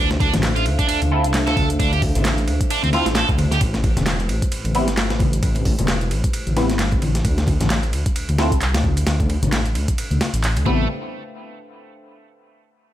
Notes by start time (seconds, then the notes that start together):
Already playing: D2 D4 A4 C5 E5 F5
0.10 snare, closed hi-hat, muted conga
0.20 D4, kick, ride, muted conga
0.33 A1, snare, closed hi-hat, high conga, low conga
0.43 snare, clap, closed hi-hat, ride
0.56 F4, closed hi-hat
0.66 D2, ride
0.79 D4, kick, closed hi-hat
0.88 D2 D4, closed hi-hat, ride
1.02 D2, closed hi-hat, ride, high conga
1.11 C4 E4 F4 A4
1.24 C2, closed hi-hat
1.34 snare, clap, closed hi-hat, ride
1.47 D2 A4, snare, closed hi-hat, muted conga
1.57 A4, kick, ride, high conga
1.70 closed hi-hat
1.80 D2 D4, kick, closed hi-hat, ride
1.93 G4, closed hi-hat, ride, muted conga
2.02 kick, open hi-hat, muted conga
2.15 A1, closed hi-hat, muted conga, high conga, low conga
2.25 snare, clap, closed hi-hat, ride
2.38 closed hi-hat
2.48 D2, ride
2.61 kick, closed hi-hat
2.70 D4, closed hi-hat, ride
2.84 D2 C4, closed hi-hat, high conga
2.93 C4 E4 F4 A4, snare, ride
3.06 A1, snare, closed hi-hat
3.15 A4, snare, clap, closed hi-hat, ride
3.29 D2, kick, closed hi-hat, muted conga
3.38 ride, high conga
3.51 G4, snare, closed hi-hat
3.61 A1 A3 E4 G4 B4, kick, closed hi-hat, ride
3.74 snare, closed hi-hat, muted conga
3.84 kick, ride, muted conga
3.97 E1, snare, closed hi-hat, high conga, low conga
4.06 snare, clap, closed hi-hat, ride
4.20 closed hi-hat
4.29 A1, ride
4.42 kick, closed hi-hat
4.52 A1, closed hi-hat, ride
4.65 A1, closed hi-hat, ride, high conga
4.75 G3 B3 C4 E4, ride
4.87 G1, snare, closed hi-hat
4.97 snare, clap, closed hi-hat, ride
5.10 A1, snare, closed hi-hat, muted conga
5.19 kick, ride, high conga
5.33 closed hi-hat
5.43 A1, kick, closed hi-hat, ride
5.55 closed hi-hat, ride, muted conga
5.65 kick, open hi-hat, muted conga
5.78 E1, closed hi-hat, muted conga, high conga, low conga
5.88 snare, clap, closed hi-hat, ride
6.01 closed hi-hat
6.11 A1, ride
6.24 kick, closed hi-hat
6.33 closed hi-hat, ride
6.47 A1, closed hi-hat, high conga
6.57 G3 B3 C4 E4, snare, ride
6.70 G1, snare, closed hi-hat
6.79 snare, clap, closed hi-hat, ride
6.92 A1, kick, closed hi-hat, muted conga
7.02 ride, high conga
7.15 snare, closed hi-hat
7.24 D2 D4 A4 E5 F5, kick, closed hi-hat, ride
7.38 snare, closed hi-hat, muted conga
7.47 kick, ride, muted conga
7.60 A1, snare, closed hi-hat, high conga, low conga
7.70 snare, clap, closed hi-hat, ride
7.83 closed hi-hat
7.93 D2, ride
8.06 kick, closed hi-hat
8.16 D2, closed hi-hat, ride
8.29 D2, closed hi-hat, ride, high conga
8.38 C4 E4 F4 A4, snare, ride
8.52 C2, kick, closed hi-hat
8.61 clap, closed hi-hat, ride
8.74 D2, snare, closed hi-hat, ride, muted conga
8.84 kick, high conga
8.97 closed hi-hat, ride
9.07 D2, snare, closed hi-hat, ride
9.20 kick, closed hi-hat, muted conga
9.29 ride, muted conga
9.43 A1, closed hi-hat, muted conga, high conga, low conga
9.52 snare, clap, closed hi-hat, ride
9.66 closed hi-hat
9.75 D2, ride
9.88 kick, closed hi-hat
9.98 closed hi-hat, ride
10.11 D2, closed hi-hat, high conga
10.21 snare, ride
10.34 A1, closed hi-hat
10.44 clap, closed hi-hat, ride
10.56 D2, closed hi-hat, ride, muted conga
10.66 A1 G3 A3 B3 C4 E4 A4 B4 C5 G5, kick, high conga